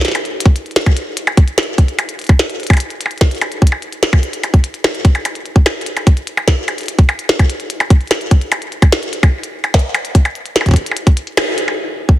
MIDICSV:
0, 0, Header, 1, 3, 480
1, 0, Start_track
1, 0, Tempo, 408163
1, 415, Time_signature, 4, 2, 24, 8
1, 14339, End_track
2, 0, Start_track
2, 0, Title_t, "Percussion blips"
2, 175, Note_on_c, 9, 76, 55
2, 293, Note_off_c, 9, 76, 0
2, 1015, Note_on_c, 9, 76, 52
2, 1133, Note_off_c, 9, 76, 0
2, 1495, Note_on_c, 9, 76, 77
2, 1613, Note_off_c, 9, 76, 0
2, 1855, Note_on_c, 9, 76, 51
2, 1973, Note_off_c, 9, 76, 0
2, 2335, Note_on_c, 9, 76, 75
2, 2453, Note_off_c, 9, 76, 0
2, 2695, Note_on_c, 9, 76, 49
2, 2813, Note_off_c, 9, 76, 0
2, 3175, Note_on_c, 9, 76, 71
2, 3216, Note_off_c, 9, 76, 0
2, 3216, Note_on_c, 9, 76, 58
2, 3256, Note_off_c, 9, 76, 0
2, 3256, Note_on_c, 9, 76, 46
2, 3373, Note_off_c, 9, 76, 0
2, 3596, Note_on_c, 9, 76, 53
2, 3713, Note_off_c, 9, 76, 0
2, 4015, Note_on_c, 9, 76, 77
2, 4133, Note_off_c, 9, 76, 0
2, 4375, Note_on_c, 9, 76, 50
2, 4493, Note_off_c, 9, 76, 0
2, 4855, Note_on_c, 9, 76, 72
2, 4973, Note_off_c, 9, 76, 0
2, 5215, Note_on_c, 9, 76, 48
2, 5333, Note_off_c, 9, 76, 0
2, 5695, Note_on_c, 9, 76, 71
2, 5813, Note_off_c, 9, 76, 0
2, 6056, Note_on_c, 9, 76, 45
2, 6173, Note_off_c, 9, 76, 0
2, 6176, Note_on_c, 9, 76, 48
2, 6293, Note_off_c, 9, 76, 0
2, 6656, Note_on_c, 9, 76, 77
2, 6773, Note_off_c, 9, 76, 0
2, 7015, Note_on_c, 9, 76, 49
2, 7133, Note_off_c, 9, 76, 0
2, 7495, Note_on_c, 9, 76, 71
2, 7613, Note_off_c, 9, 76, 0
2, 7855, Note_on_c, 9, 76, 51
2, 7973, Note_off_c, 9, 76, 0
2, 8335, Note_on_c, 9, 76, 80
2, 8453, Note_off_c, 9, 76, 0
2, 8695, Note_on_c, 9, 76, 51
2, 8813, Note_off_c, 9, 76, 0
2, 9175, Note_on_c, 9, 76, 75
2, 9293, Note_off_c, 9, 76, 0
2, 9535, Note_on_c, 9, 76, 53
2, 9653, Note_off_c, 9, 76, 0
2, 10015, Note_on_c, 9, 76, 77
2, 10133, Note_off_c, 9, 76, 0
2, 10375, Note_on_c, 9, 76, 55
2, 10493, Note_off_c, 9, 76, 0
2, 10855, Note_on_c, 9, 76, 80
2, 10973, Note_off_c, 9, 76, 0
2, 11335, Note_on_c, 9, 76, 52
2, 11453, Note_off_c, 9, 76, 0
2, 11695, Note_on_c, 9, 76, 83
2, 11813, Note_off_c, 9, 76, 0
2, 12056, Note_on_c, 9, 76, 55
2, 12173, Note_off_c, 9, 76, 0
2, 12475, Note_on_c, 9, 76, 84
2, 12593, Note_off_c, 9, 76, 0
2, 12836, Note_on_c, 9, 76, 53
2, 12953, Note_off_c, 9, 76, 0
2, 13375, Note_on_c, 9, 76, 84
2, 13493, Note_off_c, 9, 76, 0
2, 13735, Note_on_c, 9, 76, 52
2, 13853, Note_off_c, 9, 76, 0
2, 14339, End_track
3, 0, Start_track
3, 0, Title_t, "Drums"
3, 15, Note_on_c, 9, 38, 74
3, 55, Note_off_c, 9, 38, 0
3, 55, Note_on_c, 9, 38, 59
3, 55, Note_on_c, 9, 42, 39
3, 95, Note_off_c, 9, 38, 0
3, 95, Note_on_c, 9, 38, 50
3, 135, Note_off_c, 9, 38, 0
3, 135, Note_on_c, 9, 38, 41
3, 173, Note_off_c, 9, 42, 0
3, 175, Note_on_c, 9, 42, 69
3, 253, Note_off_c, 9, 38, 0
3, 293, Note_off_c, 9, 42, 0
3, 295, Note_on_c, 9, 42, 37
3, 413, Note_off_c, 9, 42, 0
3, 475, Note_on_c, 9, 42, 97
3, 535, Note_off_c, 9, 42, 0
3, 535, Note_on_c, 9, 42, 40
3, 536, Note_on_c, 9, 36, 120
3, 653, Note_off_c, 9, 36, 0
3, 653, Note_off_c, 9, 42, 0
3, 655, Note_on_c, 9, 42, 38
3, 773, Note_off_c, 9, 42, 0
3, 775, Note_on_c, 9, 42, 19
3, 835, Note_off_c, 9, 42, 0
3, 835, Note_on_c, 9, 42, 22
3, 895, Note_off_c, 9, 42, 0
3, 895, Note_on_c, 9, 38, 121
3, 895, Note_on_c, 9, 42, 93
3, 955, Note_off_c, 9, 42, 0
3, 955, Note_on_c, 9, 42, 35
3, 1013, Note_off_c, 9, 38, 0
3, 1015, Note_off_c, 9, 42, 0
3, 1015, Note_on_c, 9, 36, 102
3, 1015, Note_on_c, 9, 42, 40
3, 1133, Note_off_c, 9, 36, 0
3, 1133, Note_off_c, 9, 42, 0
3, 1136, Note_on_c, 9, 42, 66
3, 1253, Note_off_c, 9, 42, 0
3, 1375, Note_on_c, 9, 42, 93
3, 1493, Note_off_c, 9, 42, 0
3, 1495, Note_on_c, 9, 42, 39
3, 1613, Note_off_c, 9, 42, 0
3, 1615, Note_on_c, 9, 42, 70
3, 1616, Note_on_c, 9, 36, 122
3, 1733, Note_off_c, 9, 36, 0
3, 1733, Note_off_c, 9, 42, 0
3, 1735, Note_on_c, 9, 42, 39
3, 1853, Note_off_c, 9, 42, 0
3, 1855, Note_on_c, 9, 38, 121
3, 1855, Note_on_c, 9, 42, 99
3, 1915, Note_off_c, 9, 42, 0
3, 1915, Note_on_c, 9, 42, 39
3, 1973, Note_off_c, 9, 38, 0
3, 2033, Note_off_c, 9, 42, 0
3, 2095, Note_on_c, 9, 42, 67
3, 2096, Note_on_c, 9, 36, 109
3, 2213, Note_off_c, 9, 36, 0
3, 2213, Note_off_c, 9, 42, 0
3, 2215, Note_on_c, 9, 42, 37
3, 2333, Note_off_c, 9, 42, 0
3, 2335, Note_on_c, 9, 42, 93
3, 2453, Note_off_c, 9, 42, 0
3, 2455, Note_on_c, 9, 42, 40
3, 2573, Note_off_c, 9, 42, 0
3, 2575, Note_on_c, 9, 42, 35
3, 2605, Note_off_c, 9, 42, 0
3, 2605, Note_on_c, 9, 42, 29
3, 2635, Note_off_c, 9, 42, 0
3, 2635, Note_on_c, 9, 42, 25
3, 2665, Note_off_c, 9, 42, 0
3, 2665, Note_on_c, 9, 42, 20
3, 2695, Note_off_c, 9, 42, 0
3, 2695, Note_on_c, 9, 42, 39
3, 2696, Note_on_c, 9, 36, 125
3, 2813, Note_off_c, 9, 36, 0
3, 2813, Note_off_c, 9, 42, 0
3, 2815, Note_on_c, 9, 38, 123
3, 2815, Note_on_c, 9, 42, 95
3, 2932, Note_off_c, 9, 38, 0
3, 2932, Note_off_c, 9, 42, 0
3, 2935, Note_on_c, 9, 42, 39
3, 3052, Note_off_c, 9, 42, 0
3, 3055, Note_on_c, 9, 42, 29
3, 3095, Note_off_c, 9, 42, 0
3, 3095, Note_on_c, 9, 42, 34
3, 3135, Note_off_c, 9, 42, 0
3, 3135, Note_on_c, 9, 42, 39
3, 3175, Note_off_c, 9, 42, 0
3, 3175, Note_on_c, 9, 36, 107
3, 3175, Note_on_c, 9, 42, 45
3, 3216, Note_off_c, 9, 42, 0
3, 3216, Note_on_c, 9, 42, 50
3, 3256, Note_off_c, 9, 42, 0
3, 3256, Note_on_c, 9, 42, 56
3, 3293, Note_off_c, 9, 36, 0
3, 3295, Note_off_c, 9, 42, 0
3, 3295, Note_on_c, 9, 42, 91
3, 3413, Note_off_c, 9, 42, 0
3, 3415, Note_on_c, 9, 42, 39
3, 3533, Note_off_c, 9, 42, 0
3, 3536, Note_on_c, 9, 42, 67
3, 3653, Note_off_c, 9, 42, 0
3, 3655, Note_on_c, 9, 42, 35
3, 3736, Note_off_c, 9, 42, 0
3, 3736, Note_on_c, 9, 42, 29
3, 3775, Note_off_c, 9, 42, 0
3, 3775, Note_on_c, 9, 36, 126
3, 3775, Note_on_c, 9, 38, 119
3, 3775, Note_on_c, 9, 42, 94
3, 3815, Note_off_c, 9, 42, 0
3, 3815, Note_on_c, 9, 42, 25
3, 3893, Note_off_c, 9, 36, 0
3, 3893, Note_off_c, 9, 38, 0
3, 3896, Note_off_c, 9, 42, 0
3, 3896, Note_on_c, 9, 42, 37
3, 3936, Note_off_c, 9, 42, 0
3, 3936, Note_on_c, 9, 42, 31
3, 3976, Note_off_c, 9, 42, 0
3, 3976, Note_on_c, 9, 42, 25
3, 4015, Note_off_c, 9, 42, 0
3, 4015, Note_on_c, 9, 42, 65
3, 4133, Note_off_c, 9, 42, 0
3, 4135, Note_on_c, 9, 42, 37
3, 4253, Note_off_c, 9, 42, 0
3, 4255, Note_on_c, 9, 36, 106
3, 4315, Note_on_c, 9, 42, 89
3, 4373, Note_off_c, 9, 36, 0
3, 4433, Note_off_c, 9, 42, 0
3, 4495, Note_on_c, 9, 42, 36
3, 4613, Note_off_c, 9, 42, 0
3, 4615, Note_on_c, 9, 42, 36
3, 4733, Note_off_c, 9, 42, 0
3, 4735, Note_on_c, 9, 38, 122
3, 4735, Note_on_c, 9, 42, 89
3, 4853, Note_off_c, 9, 38, 0
3, 4853, Note_off_c, 9, 42, 0
3, 4855, Note_on_c, 9, 36, 112
3, 4973, Note_off_c, 9, 36, 0
3, 4975, Note_on_c, 9, 42, 64
3, 5093, Note_off_c, 9, 42, 0
3, 5095, Note_on_c, 9, 42, 38
3, 5213, Note_off_c, 9, 42, 0
3, 5215, Note_on_c, 9, 42, 92
3, 5333, Note_off_c, 9, 42, 0
3, 5335, Note_on_c, 9, 36, 103
3, 5335, Note_on_c, 9, 42, 39
3, 5453, Note_off_c, 9, 36, 0
3, 5453, Note_off_c, 9, 42, 0
3, 5455, Note_on_c, 9, 42, 67
3, 5573, Note_off_c, 9, 42, 0
3, 5575, Note_on_c, 9, 42, 37
3, 5693, Note_off_c, 9, 42, 0
3, 5695, Note_on_c, 9, 38, 121
3, 5695, Note_on_c, 9, 42, 87
3, 5813, Note_off_c, 9, 38, 0
3, 5813, Note_off_c, 9, 42, 0
3, 5816, Note_on_c, 9, 42, 39
3, 5933, Note_off_c, 9, 42, 0
3, 5935, Note_on_c, 9, 36, 127
3, 5936, Note_on_c, 9, 42, 65
3, 6053, Note_off_c, 9, 36, 0
3, 6053, Note_off_c, 9, 42, 0
3, 6056, Note_on_c, 9, 42, 37
3, 6173, Note_off_c, 9, 42, 0
3, 6176, Note_on_c, 9, 42, 87
3, 6293, Note_off_c, 9, 42, 0
3, 6296, Note_on_c, 9, 42, 37
3, 6413, Note_off_c, 9, 42, 0
3, 6416, Note_on_c, 9, 42, 35
3, 6533, Note_off_c, 9, 42, 0
3, 6535, Note_on_c, 9, 36, 98
3, 6653, Note_off_c, 9, 36, 0
3, 6656, Note_on_c, 9, 38, 112
3, 6656, Note_on_c, 9, 42, 86
3, 6773, Note_off_c, 9, 38, 0
3, 6773, Note_off_c, 9, 42, 0
3, 6836, Note_on_c, 9, 42, 38
3, 6895, Note_off_c, 9, 42, 0
3, 6895, Note_on_c, 9, 42, 59
3, 7013, Note_off_c, 9, 42, 0
3, 7015, Note_on_c, 9, 42, 37
3, 7133, Note_off_c, 9, 42, 0
3, 7135, Note_on_c, 9, 36, 114
3, 7136, Note_on_c, 9, 42, 87
3, 7253, Note_off_c, 9, 36, 0
3, 7253, Note_off_c, 9, 42, 0
3, 7255, Note_on_c, 9, 42, 37
3, 7373, Note_off_c, 9, 42, 0
3, 7375, Note_on_c, 9, 42, 65
3, 7493, Note_off_c, 9, 42, 0
3, 7495, Note_on_c, 9, 42, 36
3, 7613, Note_off_c, 9, 42, 0
3, 7615, Note_on_c, 9, 36, 107
3, 7615, Note_on_c, 9, 38, 115
3, 7615, Note_on_c, 9, 42, 85
3, 7733, Note_off_c, 9, 36, 0
3, 7733, Note_off_c, 9, 38, 0
3, 7733, Note_off_c, 9, 42, 0
3, 7855, Note_on_c, 9, 42, 64
3, 7973, Note_off_c, 9, 42, 0
3, 7975, Note_on_c, 9, 42, 33
3, 8005, Note_off_c, 9, 42, 0
3, 8005, Note_on_c, 9, 42, 27
3, 8035, Note_off_c, 9, 42, 0
3, 8035, Note_on_c, 9, 42, 22
3, 8065, Note_off_c, 9, 42, 0
3, 8065, Note_on_c, 9, 42, 19
3, 8095, Note_off_c, 9, 42, 0
3, 8095, Note_on_c, 9, 42, 85
3, 8212, Note_off_c, 9, 42, 0
3, 8215, Note_on_c, 9, 36, 113
3, 8215, Note_on_c, 9, 42, 36
3, 8333, Note_off_c, 9, 36, 0
3, 8333, Note_off_c, 9, 42, 0
3, 8335, Note_on_c, 9, 42, 36
3, 8453, Note_off_c, 9, 42, 0
3, 8455, Note_on_c, 9, 42, 37
3, 8573, Note_off_c, 9, 42, 0
3, 8575, Note_on_c, 9, 38, 112
3, 8575, Note_on_c, 9, 42, 88
3, 8693, Note_off_c, 9, 38, 0
3, 8693, Note_off_c, 9, 42, 0
3, 8695, Note_on_c, 9, 36, 97
3, 8695, Note_on_c, 9, 42, 37
3, 8813, Note_off_c, 9, 36, 0
3, 8813, Note_off_c, 9, 42, 0
3, 8815, Note_on_c, 9, 42, 60
3, 8933, Note_off_c, 9, 42, 0
3, 8935, Note_on_c, 9, 42, 36
3, 9053, Note_off_c, 9, 42, 0
3, 9055, Note_on_c, 9, 42, 89
3, 9173, Note_off_c, 9, 42, 0
3, 9175, Note_on_c, 9, 42, 38
3, 9293, Note_off_c, 9, 42, 0
3, 9295, Note_on_c, 9, 36, 118
3, 9295, Note_on_c, 9, 42, 67
3, 9413, Note_off_c, 9, 36, 0
3, 9413, Note_off_c, 9, 42, 0
3, 9415, Note_on_c, 9, 42, 16
3, 9495, Note_off_c, 9, 42, 0
3, 9495, Note_on_c, 9, 42, 22
3, 9535, Note_off_c, 9, 42, 0
3, 9535, Note_on_c, 9, 38, 109
3, 9535, Note_on_c, 9, 42, 89
3, 9575, Note_off_c, 9, 42, 0
3, 9575, Note_on_c, 9, 42, 29
3, 9653, Note_off_c, 9, 38, 0
3, 9655, Note_off_c, 9, 42, 0
3, 9655, Note_on_c, 9, 42, 38
3, 9773, Note_off_c, 9, 42, 0
3, 9775, Note_on_c, 9, 36, 106
3, 9775, Note_on_c, 9, 42, 64
3, 9893, Note_off_c, 9, 36, 0
3, 9893, Note_off_c, 9, 42, 0
3, 9895, Note_on_c, 9, 42, 34
3, 10013, Note_off_c, 9, 42, 0
3, 10015, Note_on_c, 9, 42, 87
3, 10133, Note_off_c, 9, 42, 0
3, 10135, Note_on_c, 9, 42, 37
3, 10253, Note_off_c, 9, 42, 0
3, 10255, Note_on_c, 9, 42, 37
3, 10373, Note_off_c, 9, 42, 0
3, 10375, Note_on_c, 9, 36, 114
3, 10375, Note_on_c, 9, 42, 39
3, 10493, Note_off_c, 9, 36, 0
3, 10493, Note_off_c, 9, 42, 0
3, 10495, Note_on_c, 9, 38, 114
3, 10495, Note_on_c, 9, 42, 86
3, 10613, Note_off_c, 9, 38, 0
3, 10613, Note_off_c, 9, 42, 0
3, 10615, Note_on_c, 9, 42, 37
3, 10733, Note_off_c, 9, 42, 0
3, 10735, Note_on_c, 9, 42, 63
3, 10853, Note_off_c, 9, 42, 0
3, 10855, Note_on_c, 9, 36, 98
3, 10855, Note_on_c, 9, 42, 39
3, 10973, Note_off_c, 9, 36, 0
3, 10973, Note_off_c, 9, 42, 0
3, 11095, Note_on_c, 9, 42, 38
3, 11213, Note_off_c, 9, 42, 0
3, 11335, Note_on_c, 9, 42, 37
3, 11453, Note_off_c, 9, 42, 0
3, 11455, Note_on_c, 9, 36, 111
3, 11455, Note_on_c, 9, 38, 113
3, 11455, Note_on_c, 9, 42, 91
3, 11515, Note_off_c, 9, 42, 0
3, 11515, Note_on_c, 9, 42, 40
3, 11573, Note_off_c, 9, 36, 0
3, 11573, Note_off_c, 9, 38, 0
3, 11633, Note_off_c, 9, 42, 0
3, 11695, Note_on_c, 9, 42, 66
3, 11813, Note_off_c, 9, 42, 0
3, 11815, Note_on_c, 9, 42, 35
3, 11933, Note_off_c, 9, 42, 0
3, 11935, Note_on_c, 9, 36, 103
3, 11936, Note_on_c, 9, 42, 92
3, 12053, Note_off_c, 9, 36, 0
3, 12053, Note_off_c, 9, 42, 0
3, 12056, Note_on_c, 9, 42, 40
3, 12173, Note_off_c, 9, 42, 0
3, 12176, Note_on_c, 9, 42, 39
3, 12293, Note_off_c, 9, 42, 0
3, 12296, Note_on_c, 9, 42, 39
3, 12413, Note_off_c, 9, 42, 0
3, 12416, Note_on_c, 9, 38, 115
3, 12416, Note_on_c, 9, 42, 94
3, 12533, Note_off_c, 9, 38, 0
3, 12533, Note_off_c, 9, 42, 0
3, 12535, Note_on_c, 9, 36, 48
3, 12536, Note_on_c, 9, 42, 38
3, 12565, Note_off_c, 9, 36, 0
3, 12565, Note_on_c, 9, 36, 66
3, 12595, Note_off_c, 9, 36, 0
3, 12595, Note_on_c, 9, 36, 76
3, 12625, Note_off_c, 9, 36, 0
3, 12625, Note_on_c, 9, 36, 93
3, 12653, Note_off_c, 9, 42, 0
3, 12656, Note_on_c, 9, 42, 67
3, 12743, Note_off_c, 9, 36, 0
3, 12773, Note_off_c, 9, 42, 0
3, 12775, Note_on_c, 9, 42, 40
3, 12893, Note_off_c, 9, 42, 0
3, 12895, Note_on_c, 9, 42, 91
3, 13013, Note_off_c, 9, 42, 0
3, 13015, Note_on_c, 9, 36, 100
3, 13016, Note_on_c, 9, 42, 38
3, 13133, Note_off_c, 9, 36, 0
3, 13133, Note_off_c, 9, 42, 0
3, 13135, Note_on_c, 9, 42, 66
3, 13253, Note_off_c, 9, 42, 0
3, 13255, Note_on_c, 9, 42, 39
3, 13373, Note_off_c, 9, 42, 0
3, 13375, Note_on_c, 9, 38, 113
3, 13375, Note_on_c, 9, 42, 92
3, 13493, Note_off_c, 9, 38, 0
3, 13493, Note_off_c, 9, 42, 0
3, 13615, Note_on_c, 9, 42, 68
3, 13733, Note_off_c, 9, 42, 0
3, 13735, Note_on_c, 9, 42, 39
3, 13853, Note_off_c, 9, 42, 0
3, 14215, Note_on_c, 9, 36, 99
3, 14333, Note_off_c, 9, 36, 0
3, 14339, End_track
0, 0, End_of_file